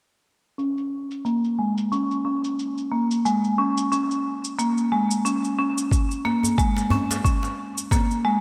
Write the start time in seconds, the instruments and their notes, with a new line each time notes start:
0.58 marimba C#4, shaker
0.78 shaker
1.11 shaker
1.25 marimba A#3, shaker
1.44 shaker
1.59 marimba G#3
1.78 shaker
1.92 marimba C#4, shaker
2.11 shaker
2.25 marimba C#4
2.44 shaker
2.59 shaker
2.78 shaker
2.92 marimba A#3
3.11 shaker
3.25 marimba G#3, shaker
3.44 shaker
3.58 marimba C#4
3.78 shaker
3.92 marimba C#4, shaker
4.11 shaker
4.44 shaker
4.59 marimba A#3, shaker
4.78 shaker
4.92 marimba G#3
5.11 shaker
5.25 marimba C#4, shaker
5.44 shaker
5.59 marimba C#4
5.78 shaker
5.91 kick, shaker
6.11 shaker
6.25 marimba A#3, djembe slap
6.43 djembe tone, shaker
6.58 marimba G#3, kick, shaker
6.77 djembe slap, shaker
6.90 marimba C#4, djembe bass
7.11 djembe slap, shaker
7.25 marimba C#4, kick, shaker
7.43 djembe slap, shaker
7.78 shaker
7.91 marimba A#3, kick, djembe tone, shaker
8.11 shaker
8.25 marimba G#3